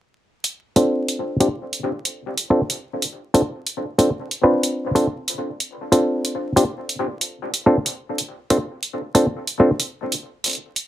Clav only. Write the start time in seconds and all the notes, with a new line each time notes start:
0.76 C4 D4 F4 A4
1.40 C4 D4 F4 G4
2.50 C4 D4 F4 A4
3.34 C4 D4 F4 A4
3.98 C4 D4 F4 A4
4.43 C4 D4 F4 B4
4.95 C4 D4 F4 A4
5.92 C4 D4 F4 A4
6.56 C4 D4 F4 G4
7.66 C4 D4 F4 A4
8.50 C4 D4 F4 A4
9.15 C4 D4 F4 A4
9.60 C4 D4 F4 A4